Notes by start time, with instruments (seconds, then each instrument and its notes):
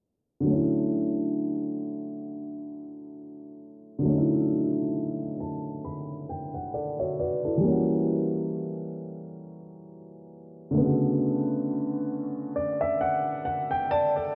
0.40 upright piano D3 F#3
0.47 upright piano A3 C#4
0.53 upright piano E4
3.99 upright piano D3 F#3
4.05 upright piano A3 C#4
4.12 upright piano D#4
4.18 upright piano E4
5.40 upright piano A5
5.85 upright piano B5
6.29 upright piano G5
6.54 upright piano F#5
6.74 upright piano A4 D5 F#5
6.99 upright piano F#4 C#5 E5
7.19 upright piano F#4 B4 D5
7.45 upright piano E4 A4
7.57 upright piano E3 G3
7.64 upright piano A#3 C#4
7.70 upright piano F#4
10.71 upright piano D3 A3
10.77 upright piano C#3 B3
10.84 upright piano F#4
12.56 upright piano D5
12.81 upright piano E5
13.01 upright piano F#5
13.45 upright piano F#5
13.71 upright piano G5
13.91 vibraphone D5, upright piano A5
14.16 upright piano A4 D5